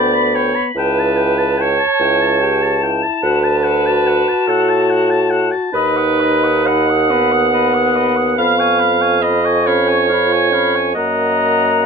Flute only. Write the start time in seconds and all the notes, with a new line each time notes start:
Already playing: B5
0.77 A5
5.73 B5
5.96 D#6
6.20 B5
6.44 D#6
6.67 B5
6.90 D#6
7.11 B5
7.32 D#6
7.53 B5
7.74 D#6
7.96 B5
8.17 D#6
8.36 B5
8.58 C#6
8.79 B5
9.01 C#6
9.21 B5
9.44 C#6
9.67 B5
9.89 C#6
10.12 B5
10.32 C#6
10.54 B5
10.75 C#6
10.96 A#5